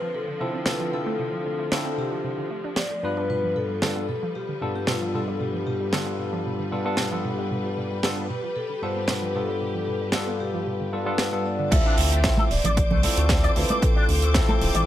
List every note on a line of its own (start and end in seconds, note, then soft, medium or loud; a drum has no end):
0.00 2.99 D3 medium
0.00 7.20 F3 medium
0.00 0.08 F3 loud
0.00 2.99 C4 medium
0.00 0.12 B4 medium
0.14 0.18 C3 medium
0.14 0.41 A4 medium
0.28 0.35 D3 medium
0.40 0.45 C3 medium
0.40 0.63 D3 medium
0.40 0.64 C4 medium
0.40 0.64 E4 medium
0.40 0.64 F4 medium
0.40 0.64 A4 medium
0.40 0.68 C5 medium
0.54 0.61 C4 medium
0.66 0.71 C3 medium
0.66 0.90 D3 medium
0.66 0.90 C4 medium
0.66 0.90 E4 medium
0.66 0.90 F4 medium
0.66 0.90 A4 medium
0.66 0.94 B4 medium
0.66 snare loud
0.80 0.84 F3 loud
0.92 1.00 C3 medium
0.92 1.68 D3 medium
0.92 1.69 C4 medium
0.92 1.69 E4 medium
0.92 1.69 F4 medium
0.92 1.94 A4 medium
0.92 1.69 A4 medium
1.06 1.13 A3 loud
1.19 1.24 C3 medium
1.33 1.37 F3 medium
1.45 1.50 C3 medium
1.59 1.69 A3 medium
1.71 2.47 D3 medium
1.71 1.83 D3 medium
1.71 2.47 C4 medium
1.71 2.48 E4 medium
1.71 2.48 F4 medium
1.71 2.48 A4 loud
1.71 snare loud
1.85 1.89 C4 loud
1.98 2.05 C3 medium
1.98 2.80 G4 medium
2.11 2.19 F3 loud
2.24 2.29 C3 medium
2.38 2.45 D3 medium
2.51 2.58 A3 medium
2.64 2.69 D4 loud
2.76 2.82 F3 medium
2.76 3.18 D5 medium
2.76 snare medium
2.91 2.98 A3 medium
3.03 3.79 G2 medium
3.03 11.68 G3 medium
3.03 3.11 G3 medium
3.03 3.79 B3 medium
3.03 3.79 D4 medium
3.03 3.80 F4 medium
3.03 11.68 B4 medium
3.03 3.80 B4 medium
3.17 3.24 D4 loud
3.17 3.29 B4 medium
3.30 3.34 B2 medium
3.30 3.57 B4 loud
3.43 3.47 F3 medium
3.56 3.60 B2 medium
3.56 4.08 A4 medium
3.69 3.80 G3 medium
3.82 4.05 G2 medium
3.82 3.94 D3 medium
3.82 4.05 B3 medium
3.82 4.05 D4 medium
3.82 4.05 F4 medium
3.82 4.05 A4 loud
3.82 snare medium
3.96 4.00 B3 loud
4.09 4.16 B2 medium
4.09 4.21 A4 medium
4.23 4.29 F3 loud
4.35 4.40 B2 medium
4.35 4.74 G4 medium
4.49 4.56 D3 medium
4.61 4.84 G2 medium
4.61 4.66 B2 medium
4.61 4.85 B3 medium
4.61 4.85 D4 medium
4.61 4.85 F4 medium
4.61 4.85 A4 medium
4.75 4.82 B3 medium
4.75 4.87 G4 medium
4.87 5.11 G2 medium
4.87 4.92 B2 medium
4.87 5.11 B3 medium
4.87 5.11 D4 medium
4.87 5.11 F4 medium
4.87 5.15 F4 medium
4.87 5.11 A4 medium
4.87 snare medium
5.01 5.05 F3 medium
5.13 5.89 G2 medium
5.13 5.22 B2 medium
5.13 5.90 B3 medium
5.13 5.90 D4 medium
5.13 5.90 F4 medium
5.13 5.41 A4 medium
5.13 5.90 A4 medium
5.28 5.35 G3 loud
5.40 5.45 B2 medium
5.40 5.65 G4 medium
5.54 5.58 F3 medium
5.67 5.71 B2 medium
5.67 7.20 G4 medium
5.80 5.91 G3 medium
5.92 6.68 G2 medium
5.92 6.04 D3 loud
5.92 6.68 B3 medium
5.92 6.69 D4 medium
5.92 6.69 F4 medium
5.92 6.69 A4 loud
5.92 snare loud
6.06 6.11 B3 loud
6.19 6.27 B2 medium
6.33 6.40 F3 loud
6.45 6.50 B2 medium
6.59 6.66 D3 medium
6.71 6.83 G2 medium
6.71 6.76 B2 medium
6.71 6.83 B3 medium
6.71 6.83 D4 medium
6.71 6.84 F4 medium
6.71 6.84 A4 medium
6.85 7.08 G2 medium
6.85 7.08 B3 medium
6.85 6.92 B3 medium
6.85 7.08 D4 medium
6.85 7.08 F4 medium
6.85 7.09 A4 medium
6.97 7.03 B2 loud
6.97 snare medium
7.11 8.00 G2 medium
7.11 7.16 F3 loud
7.11 8.00 B3 medium
7.11 8.00 D4 medium
7.11 8.00 F4 medium
7.11 8.01 A4 medium
7.24 7.32 B2 medium
7.24 11.68 G4 medium
7.38 7.45 G3 loud
7.51 7.55 B2 medium
7.65 7.69 F3 medium
7.77 7.82 B2 medium
7.91 8.01 G3 medium
8.03 8.26 G2 medium
8.03 8.15 D3 loud
8.03 8.26 B3 medium
8.03 8.26 D4 medium
8.03 8.26 F4 medium
8.03 8.26 A4 loud
8.03 snare loud
8.17 8.21 B3 loud
8.30 8.37 B2 medium
8.30 8.54 B4 medium
8.43 8.50 F3 loud
8.56 8.60 B2 medium
8.56 8.83 A4 medium
8.70 8.77 D3 medium
8.82 9.06 G2 medium
8.82 8.87 B2 medium
8.82 9.06 B3 medium
8.82 9.06 D4 medium
8.82 9.06 F4 medium
8.82 9.06 A4 medium
8.82 9.07 C5 medium
8.96 9.03 B3 medium
9.08 9.32 G2 medium
9.08 9.13 B2 loud
9.08 9.32 B3 medium
9.08 9.32 D4 medium
9.08 9.32 F4 medium
9.08 9.32 A4 medium
9.08 9.36 B4 loud
9.08 snare loud
9.22 9.26 F3 loud
9.34 10.11 G2 medium
9.34 9.42 B2 medium
9.34 10.11 B3 medium
9.34 10.11 D4 medium
9.34 10.11 F4 medium
9.34 10.43 A4 medium
9.34 10.11 A4 medium
9.48 9.55 G3 loud
9.61 9.66 B2 medium
9.75 9.79 F3 medium
9.87 9.92 B2 medium
10.01 10.12 G3 medium
10.12 10.89 G2 medium
10.12 10.25 D3 loud
10.12 10.89 B3 medium
10.12 10.90 D4 medium
10.12 10.90 F4 medium
10.12 10.90 A4 medium
10.12 snare loud
10.27 10.32 B3 medium
10.40 10.48 B2 medium
10.40 11.41 G4 medium
10.54 10.61 F3 loud
10.66 10.71 B2 medium
10.80 10.87 D3 medium
10.92 11.04 G2 medium
10.92 11.00 G3 medium
10.92 11.04 B3 medium
10.92 11.04 D4 medium
10.92 11.05 F4 medium
10.92 11.05 A4 medium
11.06 11.29 G2 medium
11.06 11.17 G3 medium
11.06 11.29 B3 medium
11.06 11.29 D4 medium
11.06 11.29 F4 medium
11.06 11.30 A4 medium
11.18 11.27 B3 medium
11.18 11.46 B4 medium
11.18 snare loud
11.32 11.70 G2 medium
11.32 11.37 G3 medium
11.32 11.70 B3 medium
11.32 11.70 D4 medium
11.32 11.70 F4 medium
11.32 11.70 A4 medium
11.45 11.50 B3 medium
11.45 11.73 D5 medium
11.59 11.70 D3 loud
11.71 11.81 D2 loud
11.71 12.19 C4 loud
11.71 12.19 E4 medium
11.71 12.19 F4 medium
11.71 12.19 A4 loud
11.71 14.86 C5 medium
11.71 12.53 E5 loud
11.71 14.86 D6 medium
11.71 kick loud
11.71 closed hi-hat loud
11.71 crash loud
11.85 11.95 D4 loud
11.98 12.31 D2 medium
11.98 open hi-hat loud
12.12 12.21 A3 medium
12.12 closed hi-hat medium
12.24 12.47 C4 medium
12.24 12.47 E4 medium
12.24 12.48 F4 medium
12.24 12.48 A4 loud
12.24 kick loud
12.24 snare loud
12.24 closed hi-hat medium
12.37 12.42 A4 medium
12.37 high conga loud
12.51 12.60 D1 loud
12.51 13.52 D5 loud
12.51 open hi-hat medium
12.64 12.92 A1 loud
12.64 12.71 D5 medium
12.64 closed hi-hat medium
12.64 muted conga soft
12.64 low conga medium
12.77 kick loud
12.77 closed hi-hat medium
12.91 13.08 C2 medium
12.91 13.00 A3 medium
12.91 muted conga soft
12.91 low conga medium
13.03 13.26 C4 medium
13.03 13.27 E4 medium
13.03 13.27 F4 medium
13.03 13.27 A4 loud
13.03 open hi-hat loud
13.03 high conga medium
13.17 13.49 D2 medium
13.17 13.27 A3 medium
13.17 closed hi-hat medium
13.29 13.53 C4 medium
13.29 13.53 E4 medium
13.29 13.53 F4 medium
13.29 13.53 A4 medium
13.29 kick loud
13.29 snare loud
13.29 closed hi-hat medium
13.43 13.50 D5 loud
13.43 closed hi-hat soft
13.55 13.65 D2 loud
13.55 14.32 C4 medium
13.55 14.32 E4 medium
13.55 14.32 F4 medium
13.55 14.32 A4 medium
13.55 13.83 B4 medium
13.55 open hi-hat medium
13.69 13.76 D5 medium
13.69 closed hi-hat medium
13.69 high conga medium
13.82 14.86 A4 medium
13.82 kick loud
13.82 closed hi-hat medium
13.96 14.05 D4 loud
14.09 14.41 D2 medium
14.09 open hi-hat medium
14.22 14.32 A3 medium
14.22 closed hi-hat medium
14.34 14.86 C4 medium
14.34 14.86 E4 medium
14.34 14.86 F4 medium
14.34 14.86 A4 loud
14.34 kick loud
14.34 snare loud
14.34 closed hi-hat medium
14.49 14.52 A4 medium
14.49 high conga loud
14.61 14.70 D1 loud
14.61 open hi-hat medium
14.75 14.83 A1 loud
14.75 14.81 D5 medium
14.75 closed hi-hat medium
14.75 muted conga medium